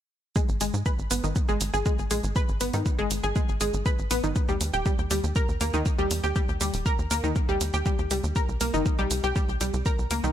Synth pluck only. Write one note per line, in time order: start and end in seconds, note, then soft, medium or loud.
0.36 0.42 G#3 medium
0.61 0.64 G#3 medium
0.86 0.95 B4 medium
1.11 1.14 B3 medium
1.24 1.32 D#3 medium
1.49 1.57 G#3 loud
1.74 1.77 G#4 medium
1.86 1.92 G#3 medium
2.11 2.14 G#3 medium
2.36 2.45 B4 medium
2.61 2.64 B3 medium
2.74 2.82 D#3 medium
2.99 3.07 G#3 loud
3.24 3.27 G#4 medium
3.36 3.42 G#3 medium
3.61 3.64 G#3 medium
3.86 3.95 B4 medium
4.11 4.14 B3 medium
4.24 4.32 D#3 medium
4.49 4.57 G3 medium
4.74 4.77 G4 medium
4.86 4.92 G3 medium
5.11 5.14 G3 medium
5.36 5.45 A#4 medium
5.61 5.64 A#3 medium
5.74 5.82 D#3 medium
5.98 6.07 G3 loud
6.24 6.27 G4 medium
6.36 6.42 G3 medium
6.61 6.64 G3 medium
6.86 6.95 A#4 medium
7.11 7.14 A#3 medium
7.24 7.32 D#3 medium
7.49 7.57 G3 loud
7.74 7.77 G4 medium
7.86 7.92 G3 medium
8.11 8.14 G3 medium
8.36 8.45 A#4 medium
8.61 8.64 A#3 medium
8.74 8.82 D#3 medium
8.99 9.07 G3 loud
9.24 9.27 G4 medium
9.36 9.42 G3 medium
9.61 9.64 G3 medium
9.86 9.95 A#4 medium
10.11 10.14 A#3 medium
10.24 10.32 D#3 medium